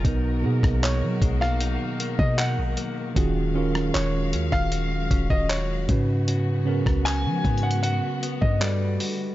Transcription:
Already playing: F#3 G#4 A#4
0.03 B1 B2 D#3 B3 D#4 F#4, kick, closed hi-hat
0.07 A#4
0.42 B2 A#3 B3 D#4 G#4
0.63 B1, kick, cross-stick
0.83 D#4 C#5, clap, closed hi-hat
1.03 F#3
1.22 B1 G#3, kick, closed hi-hat
1.41 A#3 F5, cross-stick
1.61 D#4, closed hi-hat
2.00 A#3, closed hi-hat
2.19 B2 D#5, kick
2.38 D#4 F#5, clap, closed hi-hat
2.58 A#1
2.77 A#3, closed hi-hat
3.14 D#1 D#3 G#3 C#4 F4 F#4 F5, kick, closed hi-hat
3.18 G#4
3.54 D#3 C#4 F4 F#4
3.58 A#4
3.75 cross-stick
3.94 D#1 F#4 C#5, clap, closed hi-hat
4.33 D#2 C#4, closed hi-hat
4.52 D#1 F5, kick, cross-stick
4.72 F#4, closed hi-hat
5.11 D#1 C#4, kick, closed hi-hat
5.30 D#1 D#5, kick
5.50 F#4 C#5, clap, closed hi-hat
5.87 G#2 C#3 G#3 B3 C#4 F#4, kick, closed hi-hat
5.91 B4
6.28 C#3 F#4, closed hi-hat
6.65 C#3 B3 C#4 F#4 A#4
6.86 C#2, kick, cross-stick
7.05 F#4 G#5, clap, closed hi-hat
7.26 F3
7.45 G#2 B3, kick, closed hi-hat
7.58 closed hi-hat
7.63 F#5
7.71 closed hi-hat
7.83 F#4 F#5, closed hi-hat
8.23 B3, closed hi-hat
8.41 G2 D#5, kick
8.60 D3 G3 A3 F#4 A4 B4 D5, clap, closed hi-hat
9.00 F#4, open hi-hat

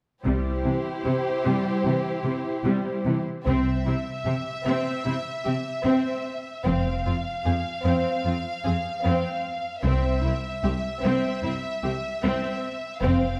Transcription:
0.24 C2 C3 G3 E4 G4 C5
0.64 C3 E3
1.04 C3
1.45 C3 G3
1.85 C3 E3
2.25 C3
2.64 C3 G3
3.05 C3 E3
3.46 C2 C3 C4 E5
3.86 C3 C4 E4
4.26 C3 C4 G4
4.66 C3 C4
5.05 C3 C4 E4
5.45 C3 C4 G4
5.85 C3 C4
6.64 F1 F2 C4 F5
7.05 F2 C4 F4
7.45 F2 C4 G#4
7.84 F2 C4
8.25 F2 C4 F4
8.64 F2 C4 G#4
9.04 F2 C4
9.83 C2 C4 E5
10.23 C2 C4 E4
10.63 C2 C4 G4
11.03 C2 C4
11.43 C2 C4 E4
11.84 C2 C4 G4
12.23 C2 C4
13.02 F1 F2 C4 F5

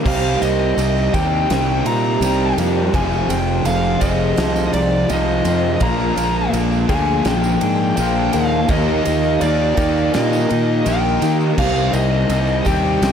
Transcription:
0.05 C2 C3 D#3 G3 A#3 C4 G4 F5, kick, crash
0.23 tambourine
0.41 C2 G3 A#3 C4 G4 D#5, ride, tambourine
0.77 C2 C3 D#3 G3 A#3 C4 G4, ride, tambourine
0.97 tambourine
1.13 D#2 C3 G3 C4 G4 G5, kick, ride, tambourine
1.49 C2 C3 D#3 G3 A#3 C4 G4, snare, ride
1.85 A#2 G3 C4 D#4 G4 A#5, ride
2.21 C2 C3 D#3 G3 A#3 C4, ride, tambourine
2.25 G4
2.57 F2 G3 A#3 C4 G4, ride, tambourine
2.93 F1 F2 C3 F3 G#3 C4 F4 G#5, kick, ride
3.12 tambourine
3.28 F1 G#3 C4 F4 G5, ride, tambourine
3.32 C3 F3
3.65 F1 F2 C3 F3 G#3 C4 F5, ride, tambourine
3.69 F4
3.84 tambourine
4.00 F1 F2 F3 G#3 C4 F4 G#4 D#5, kick, ride, tambourine
4.05 C3 F3
4.36 C2 F2 C3 F3 G#3 C4 F4, snare, ride
4.56 tambourine
4.73 C2 F3 G#3 C4 D#4 F4 D5, ride
5.08 C2 F2 C3 F3 G#3 C4 F4 D#5, ride, tambourine
5.44 F2 C3 F3 G#3 C4 F4, ride, tambourine
5.80 A#1 A#2 D3 F3 G#3 A#3 D4 F4 A#5, kick, ride
6.00 tambourine
6.16 A#1 F3 G#3 A#3 D4 F4, ride, tambourine
6.53 A#1 A#2 D3 F3 G#3 A#3 D4 F4, ride, tambourine
6.72 tambourine
6.88 D2 F3 G#3 A#3 D4 F4 G#4 G#5, kick, ride
6.92 A#2
7.24 A#1 A#2 D3 G#3 A#3 D4 F4 G5, snare, ride
7.44 tambourine
7.60 G#2 G#3 D4 F4, ride
7.96 A#1 A#2 D3 F3 G#3 A#3 D4 F4 G5, ride, tambourine
8.32 D#2 G#3 A#3 D4 F4 F5, ride, tambourine
8.36 F3
8.67 D#2 D#3 F3 A#3 D#4 G4 D#5, kick, ride, tambourine
9.04 D#2 F3 A#3 D#4 G4, ride, tambourine
9.24 tambourine
9.40 D#2 D#3 A#3 D#4 G4 D5, ride, tambourine
9.76 D#2 A#3 D#4 G4, kick, ride, tambourine
9.81 D#3
9.97 tambourine
10.12 A#2 D#3 A#3 D#4 G4 D#5, snare, ride, tambourine
10.33 tambourine
10.48 A#2 A#3 D#4 G4, ride, tambourine
10.84 A#1 D#3 F3 A#3 D#4 G4 G5, ride, tambourine
11.20 D#3 A#3 D#4 G4, snare, ride, tambourine
11.41 tambourine
11.57 C2 C3 D#3 G3 A#3 C4 G4 F5, kick, crash
11.76 tambourine
11.93 C2 G3 A#3 C4 G4 D#5, ride, tambourine
12.28 C2 C3 D#3 G3 A#3 C4 G4, ride, tambourine
12.47 tambourine
12.65 D#2 C4 G4 G5, kick, ride, tambourine
12.69 C3 G3
13.01 C2 C3 D#3 G3 A#3 C4 G4, snare, ride

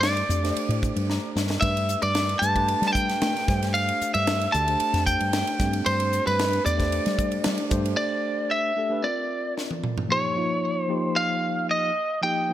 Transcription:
Already playing: G2 A3 D4 G4 C5
0.01 D5, snare, ride
0.17 ride
0.29 F2 A3 D4 G4 D5, hi-hat pedal
0.43 A3 D4 G4 C5, snare, ride
0.56 muted fretless electric bass stroke, ride
0.69 A2, ride
0.83 kick, hi-hat pedal
0.96 G2, ride
1.10 A#5, snare
1.35 G2, snare, hi-hat pedal
1.50 snare
1.61 G2 A3 D4 G4 B4 E5, kick, ride
1.77 ride
1.89 hi-hat pedal
2.02 G2 D5, ride
2.15 snare, ride
2.29 ride
2.39 G2 A3 D4 A5, hi-hat pedal
2.44 G4 B4
2.55 A3 D4 G4 B4, kick, ride
2.68 ride
2.82 G3, snare, ride
2.88 A5
2.93 G5, kick, hi-hat pedal
3.09 snare, ride
3.22 A3, snare, ride
3.37 snare, ride
3.47 G2 A3 D4 G4 C5, kick, snare, hi-hat pedal
3.63 snare, ride
3.74 F5, ride
3.89 ride
4.01 muted fretless electric bass stroke, hi-hat pedal
4.14 G2 E5, ride
4.27 snare, ride
4.41 ride
4.52 D2 A3 D4 G4 D5 A5, hi-hat pedal
4.68 A3 D4 G4 C5, ride
4.80 ride
4.93 F2, snare, ride
5.06 G5, kick, hi-hat pedal
5.21 G2, ride
5.33 snare, ride
5.47 ride
5.59 G2 A3 C4 D4 G4, kick, snare, hi-hat pedal
5.73 ride
5.86 G2 C5, ride
6.00 ride
6.13 hi-hat pedal
6.27 G2 B4, ride
6.39 snare, ride
6.53 ride
6.64 E2 A3 D4 G4 D5, hi-hat pedal
6.77 A3 D4 G4 C5, kick, snare, ride
6.92 ride
7.06 G3, snare, ride
7.19 kick, hi-hat pedal
7.32 ride
7.44 G3, snare, ride
7.58 ride
7.69 G2 A3 D4 G4 C5, kick, hi-hat pedal
7.86 ride
7.97 D5
8.51 E5
8.77 A3 D4 G4 A4
8.89 A3 D4 G4 B4
9.03 C4 F4 A#4 D5
9.58 snare
9.71 high tom
9.84 mid tom
9.98 floor tom
10.09 F3 A#3 D#4 G4 C#5
10.36 F3 A#3 D#4 F4
10.84 C5
10.88 F3 A#3 D#4 G4
11.16 F5
11.71 D#5
12.22 F3 A#3 D#4 G4 G5
12.49 F3 A#3

